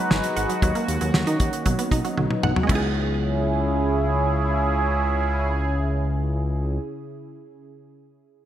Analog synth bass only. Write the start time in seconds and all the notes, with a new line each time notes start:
0.11 G#1
0.36 G#1
0.62 D#2
0.88 D#2
1.01 D#2
1.14 D#2
1.27 D#3
1.40 D#2
1.66 B1
1.91 B1
2.17 B1
2.43 B1
2.69 C#2